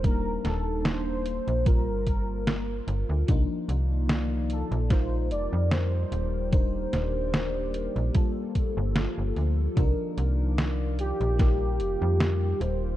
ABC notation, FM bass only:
X:1
M:4/4
L:1/16
Q:"Swing 16ths" 1/4=74
K:Cdor
V:1 name="FM bass" clef=bass
E,,,2 E,,,4- E,,, B,,,2 G,,,4- G,,, G,,, D,, | C,, z C,,4- C,, B,,,3 F,,, F,,3 E,,,2- | E,,,2 E,,,4- E,,, B,,, z3 G,,,2 G,,, D,,2 | C,, z C,,4- C,, B,,,3 F,,, F,,3 E,,,2 |]